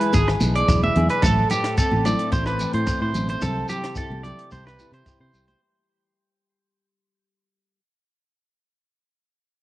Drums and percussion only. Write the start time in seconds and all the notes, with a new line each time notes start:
0.01 closed hi-hat
0.13 kick, closed hi-hat, high conga, shekere
0.28 cross-stick
0.40 closed hi-hat, high conga, low conga, shekere
0.55 closed hi-hat
0.68 kick, cross-stick, closed hi-hat, low conga, shekere
0.84 high conga
0.96 closed hi-hat, low conga
1.09 closed hi-hat
1.22 kick, cross-stick, closed hi-hat, low conga, shekere
1.50 closed hi-hat, low conga, shekere
1.64 cross-stick, closed hi-hat
1.77 kick, closed hi-hat, shekere
1.91 high conga
2.05 cross-stick, closed hi-hat, low conga, shekere
2.19 closed hi-hat
2.32 kick, closed hi-hat, high conga, shekere
2.46 cross-stick
2.59 closed hi-hat, shekere
2.73 closed hi-hat
2.87 kick, cross-stick, closed hi-hat, shekere
3.14 closed hi-hat, low conga, shekere
3.28 closed hi-hat, high conga
3.42 kick, cross-stick, closed hi-hat, low conga, shekere
3.69 closed hi-hat, low conga, shekere
3.84 cross-stick, closed hi-hat
3.96 kick, closed hi-hat, shekere
4.12 high conga
4.24 closed hi-hat, low conga
4.39 closed hi-hat
4.51 kick, closed hi-hat, high conga, shekere
4.67 cross-stick
4.79 closed hi-hat, shekere
4.93 closed hi-hat
5.06 kick, cross-stick, closed hi-hat, shekere
5.34 closed hi-hat, shekere
5.48 closed hi-hat, high conga